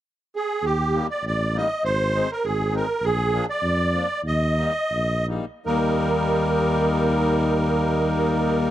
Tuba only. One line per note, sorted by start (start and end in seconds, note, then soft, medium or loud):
0.63 1.02 D#2 medium
1.23 1.63 A1 medium
1.84 2.23 G#1 medium
2.45 2.83 G#1 medium
3.02 3.41 A#1 medium
3.62 4.03 F2 medium
4.24 4.68 D#2 medium
4.91 5.40 A#1 medium
5.67 8.71 D#2 medium